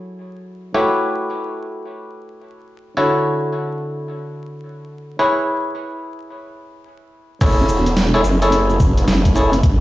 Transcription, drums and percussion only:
7.41 kick, closed hi-hat, crash, shaker
7.59 shaker
7.69 shaker
7.86 closed hi-hat, shaker
7.97 snare, closed hi-hat, shaker
8.14 shaker
8.24 snare, shaker
8.42 closed hi-hat, shaker
8.52 closed hi-hat, shaker
8.70 shaker
8.80 kick, closed hi-hat, shaker
8.97 closed hi-hat, shaker
9.08 snare, closed hi-hat, shaker
9.25 kick, closed hi-hat, shaker
9.36 shaker
9.53 closed hi-hat, shaker
9.63 kick, closed hi-hat, shaker

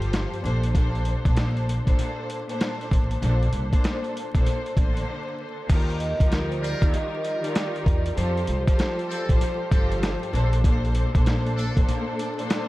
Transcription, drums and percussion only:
0.02 closed hi-hat
0.13 snare, closed hi-hat
0.34 closed hi-hat
0.46 closed hi-hat
0.63 closed hi-hat
0.75 kick, closed hi-hat
0.95 closed hi-hat
1.05 closed hi-hat
1.25 kick, closed hi-hat
1.37 snare, closed hi-hat
1.57 closed hi-hat
1.69 closed hi-hat
1.87 kick, closed hi-hat
1.99 closed hi-hat
2.30 closed hi-hat
2.49 closed hi-hat
2.61 snare, closed hi-hat
2.81 closed hi-hat
2.91 kick, closed hi-hat
3.11 closed hi-hat
3.23 closed hi-hat
3.43 closed hi-hat
3.53 closed hi-hat
3.73 kick, closed hi-hat
3.84 snare, closed hi-hat
4.04 closed hi-hat
4.17 closed hi-hat
4.35 kick, closed hi-hat
4.46 closed hi-hat
4.66 closed hi-hat
4.77 kick, closed hi-hat
4.97 closed hi-hat
5.70 kick, closed hi-hat, crash
5.90 closed hi-hat
6.00 closed hi-hat
6.20 kick, closed hi-hat
6.32 snare, closed hi-hat
6.52 closed hi-hat
6.64 closed hi-hat
6.82 kick, closed hi-hat
6.94 closed hi-hat
7.25 closed hi-hat
7.44 closed hi-hat
7.55 snare, closed hi-hat
7.76 closed hi-hat
7.86 kick, closed hi-hat
8.06 closed hi-hat
8.17 closed hi-hat
8.37 closed hi-hat
8.47 closed hi-hat
8.68 kick, closed hi-hat
8.79 snare, closed hi-hat
8.99 closed hi-hat
9.12 closed hi-hat
9.29 kick, closed hi-hat
9.41 closed hi-hat
9.71 kick, closed hi-hat
9.92 closed hi-hat
10.03 snare, closed hi-hat
10.23 closed hi-hat
10.35 closed hi-hat
10.53 closed hi-hat
10.64 kick, closed hi-hat
10.85 closed hi-hat
10.95 closed hi-hat
11.15 kick, closed hi-hat
11.26 snare, closed hi-hat
11.46 closed hi-hat
11.59 closed hi-hat
11.77 kick, closed hi-hat
11.89 closed hi-hat
12.19 closed hi-hat
12.39 closed hi-hat
12.50 snare, closed hi-hat

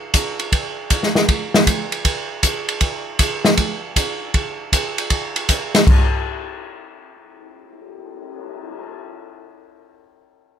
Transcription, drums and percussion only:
0.14 kick, hi-hat pedal, ride
0.39 ride
0.52 kick, ride
0.90 kick, hi-hat pedal, ride
1.03 snare
1.15 snare
1.29 kick, ride
1.54 snare
1.67 kick, hi-hat pedal, ride
1.92 ride
2.05 kick, ride
2.43 kick, hi-hat pedal, ride
2.69 ride
2.81 kick, ride
3.19 kick, hi-hat pedal, ride
3.45 snare
3.57 kick, ride
3.96 kick, hi-hat pedal, ride
4.34 kick, ride
4.72 kick, hi-hat pedal, ride
4.98 ride
5.10 kick, ride
5.36 ride
5.49 kick, hi-hat pedal, ride
5.75 snare, ride
5.87 kick, crash
6.12 cymbal swell

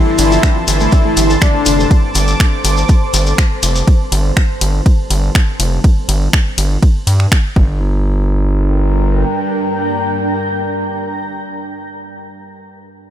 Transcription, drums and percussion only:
0.18 open hi-hat, ride, shekere
0.32 shekere
0.43 finger snap, kick, ride, shekere
0.68 open hi-hat, ride, shekere
0.80 shekere
0.92 kick, ride, shekere
1.17 open hi-hat, ride, shekere
1.30 shekere
1.41 finger snap, kick, ride, shekere
1.66 open hi-hat, ride, shekere
1.80 shekere
1.91 kick, ride, shekere
2.15 open hi-hat, ride, shekere
2.28 shekere
2.40 finger snap, kick, ride, shekere
2.65 open hi-hat, ride, shekere
2.77 shekere
2.89 kick, ride, shekere
3.14 open hi-hat, ride, shekere
3.27 shekere
3.38 finger snap, kick, ride, shekere
3.63 open hi-hat, ride, shekere
3.75 shekere
3.87 kick, ride
4.12 open hi-hat, ride
4.37 finger snap, kick, ride
4.61 open hi-hat, ride
4.86 kick, ride
5.11 open hi-hat, ride
5.35 finger snap, kick, ride
5.60 open hi-hat, ride
5.84 kick, ride
6.09 open hi-hat, ride
6.33 finger snap, kick, ride
6.58 open hi-hat, ride
6.83 kick, ride
7.07 open hi-hat, ride
7.20 finger snap
7.32 finger snap, kick, ride
7.56 kick

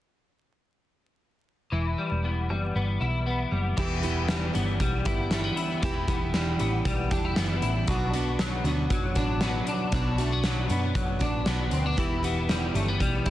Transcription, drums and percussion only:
3.78 kick, crash
4.03 closed hi-hat
4.29 snare, closed hi-hat
4.55 closed hi-hat
4.80 kick, closed hi-hat
5.05 kick, closed hi-hat
5.31 snare, closed hi-hat
5.57 closed hi-hat
5.83 kick, closed hi-hat
6.08 kick, closed hi-hat
6.34 snare, closed hi-hat
6.60 closed hi-hat
6.85 kick, closed hi-hat
7.11 kick, closed hi-hat
7.36 snare, closed hi-hat
7.62 closed hi-hat
7.88 kick, closed hi-hat
8.14 closed hi-hat
8.39 snare, closed hi-hat
8.65 closed hi-hat
8.90 kick, closed hi-hat
9.15 kick, closed hi-hat
9.41 snare, closed hi-hat
9.67 closed hi-hat
9.92 kick, closed hi-hat
10.18 closed hi-hat
10.44 snare, closed hi-hat
10.70 closed hi-hat
10.95 kick, closed hi-hat
11.20 kick, closed hi-hat
11.46 snare, closed hi-hat
11.71 closed hi-hat
11.98 kick, closed hi-hat
12.24 closed hi-hat
12.49 snare, closed hi-hat
12.75 closed hi-hat
13.00 kick, closed hi-hat
13.26 kick, closed hi-hat

